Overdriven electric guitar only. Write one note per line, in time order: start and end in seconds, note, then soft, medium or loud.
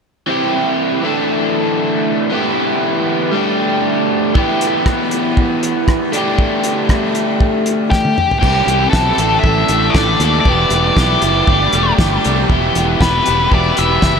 0.26 1.01 E3 medium
0.26 1.03 C4 medium
0.26 1.04 E4 medium
0.26 1.04 G4 medium
1.02 2.29 E3 medium
1.02 2.31 A3 medium
1.02 2.32 D4 medium
1.02 2.32 A4 medium
2.30 3.31 E3 medium
2.30 3.32 B3 medium
2.30 3.33 E4 medium
2.30 3.35 G4 medium
3.32 4.34 G3 medium
3.32 4.34 A3 medium
3.32 4.37 D4 medium
3.32 4.38 G4 medium
4.34 6.12 E3 medium
4.34 6.12 B3 medium
4.34 6.13 E4 medium
4.38 6.15 G4 medium
6.12 8.15 A3 medium
6.12 8.16 D4 medium
6.12 8.17 G4 medium
8.41 8.65 E3 medium
8.41 8.66 C4 medium
8.41 8.66 E4 medium
8.41 8.67 G4 medium
8.66 8.91 E3 medium
8.66 8.90 C4 medium
8.66 8.91 E4 medium
8.66 8.92 G4 medium
8.92 9.17 E3 medium
8.92 9.17 C4 medium
8.92 9.17 E4 medium
8.92 9.18 G4 medium
9.19 9.42 E3 medium
9.19 9.44 A3 medium
9.19 9.45 D4 medium
9.19 9.45 A4 medium
9.43 9.68 E3 medium
9.43 9.69 A3 medium
9.43 9.70 D4 medium
9.43 9.69 A4 medium
9.69 9.94 E3 medium
9.69 9.95 A3 medium
9.69 9.96 D4 medium
9.69 9.96 A4 medium
9.95 10.20 E3 medium
9.95 10.21 A3 medium
9.95 10.22 D4 medium
9.95 10.22 A4 medium
10.21 10.45 E3 medium
10.21 10.46 A3 medium
10.21 10.47 D4 medium
10.21 10.46 A4 medium
10.46 10.73 E3 medium
10.46 10.73 B3 medium
10.46 10.74 E4 medium
10.46 10.75 G4 medium
10.74 10.97 E3 medium
10.74 10.98 B3 medium
10.74 10.98 E4 medium
10.74 11.00 G4 medium
10.98 11.21 E3 medium
10.98 11.22 B3 medium
10.98 11.23 E4 medium
10.98 11.24 G4 medium
11.22 11.47 E3 medium
11.22 11.47 B3 medium
11.22 11.48 E4 medium
11.22 11.50 G4 medium
11.48 11.74 G3 medium
11.48 11.73 A3 medium
11.48 11.75 D4 medium
11.48 11.75 G4 medium
11.74 11.98 G3 medium
11.74 11.98 A3 medium
11.74 12.00 D4 medium
11.74 12.00 G4 medium
11.98 12.23 G3 medium
11.98 12.23 A3 medium
11.98 12.24 D4 medium
11.98 12.25 G4 medium
12.24 12.49 G3 medium
12.24 12.49 A3 medium
12.24 12.51 D4 medium
12.24 12.52 G4 medium
12.49 12.74 E3 medium
12.49 12.74 B3 medium
12.49 12.75 E4 medium
12.49 12.76 G4 medium
12.75 12.99 E3 medium
12.75 12.99 B3 medium
12.75 13.00 E4 medium
12.75 13.02 G4 medium
13.01 13.24 E3 medium
13.01 13.25 B3 medium
13.01 13.26 E4 medium
13.01 13.27 G4 medium
13.25 13.50 E3 medium
13.25 13.51 B3 medium
13.25 13.51 E4 medium
13.25 13.53 G4 medium
13.51 13.75 E3 medium
13.51 13.76 B3 medium
13.51 13.76 E4 medium
13.51 13.78 G4 medium
13.76 13.99 E3 medium
13.76 14.00 B3 medium
13.76 14.01 E4 medium
13.76 14.02 G4 medium
14.01 14.20 E3 medium
14.01 14.20 B3 medium
14.01 14.20 E4 medium
14.01 14.20 G4 medium